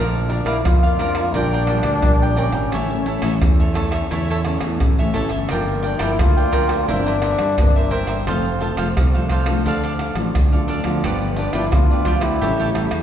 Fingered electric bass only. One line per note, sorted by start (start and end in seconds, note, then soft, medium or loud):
0.00 0.40 A#1 medium
0.45 0.61 A#1 medium
0.65 1.36 F2 medium
1.34 1.79 A#1 loud
1.84 2.00 D2 medium
2.03 2.48 A#1 medium
2.53 2.72 G#1 medium
2.72 3.17 A1 medium
3.23 3.39 A1 medium
3.41 4.01 E2 medium
4.11 4.56 E2 medium
4.62 4.78 E2 medium
4.81 5.11 A1 medium
5.14 5.30 A1 medium
5.31 5.50 G1 medium
5.51 5.95 G1 medium
6.00 6.16 G1 medium
6.19 6.91 D2 medium
6.89 7.33 G1 medium
7.39 7.55 G2 medium
7.59 8.03 G1 medium
8.08 8.27 G1 medium
8.27 8.71 F1 loud
8.77 8.93 F1 loud
8.97 9.66 C2 medium
9.66 10.10 D2 medium
10.15 10.31 A1 medium
10.35 10.79 D2 medium
10.85 11.05 D2 medium
11.04 11.48 G1 medium
11.54 11.70 G1 loud
11.73 12.43 D2 medium
12.42 12.86 A1 loud
12.92 13.03 E2 medium